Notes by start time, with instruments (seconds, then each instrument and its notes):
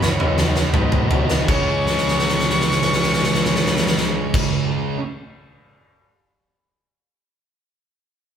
Already playing: violin B5
0.01 picked electric bass C#2, distorted electric guitar D#3 F#3 B3 D#4, clean electric guitar C#5, snare
0.20 overdriven electric guitar F#3 B3 D#4, mid tom
0.38 picked electric bass C#2, overdriven electric guitar D#3 F#3 B3 D#4, snare
0.54 distorted electric guitar F#3 B3 D#4, muted overdriven electric guitar stroke, snare
0.73 picked electric bass G#2, overdriven electric guitar B2 D#3 F#3 B3 D#4, clean electric guitar B4, floor tom
0.92 overdriven electric guitar F#3 B3 D#4, floor tom
1.10 picked electric bass C#2, overdriven electric guitar D#3 F#3 B3 D#4, floor tom
1.28 distorted electric guitar F#3 B3 D#4, snare
1.47 picked electric bass C#2, overdriven electric guitar C#3 G#3, clean electric guitar C#5, violin C#6, kick, crash
1.51 overdriven electric guitar C#4
1.87 snare
1.98 snare
2.08 snare
2.19 snare
2.29 snare
2.39 snare
2.50 snare
2.61 snare
2.71 snare
2.82 snare
2.93 snare
3.03 snare
3.14 snare
3.24 snare
3.34 snare
3.45 snare
3.56 snare
3.66 snare
3.77 snare
3.87 snare
3.98 snare
4.34 kick, crash